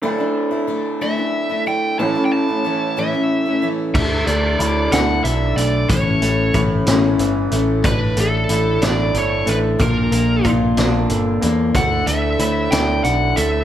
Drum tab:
CC |------|------|x-----|------|
HH |------|------|-xxxxx|xxxxxx|
SD |------|------|---o--|---o--|
BD |------|------|o-----|o-o---|

CC |------|------|------|
HH |xxxxxx|xxxxxx|xxxxxx|
SD |---o--|---o--|---o--|
BD |o-----|o-o---|o-----|